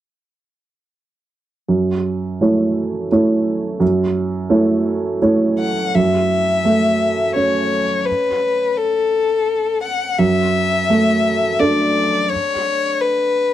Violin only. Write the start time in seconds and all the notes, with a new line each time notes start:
5.59 F#5
5.95 E5
7.35 C#5
8.06 B4
8.77 A4
9.83 F#5
10.19 E5
11.59 D5
12.31 C#5
13.01 B4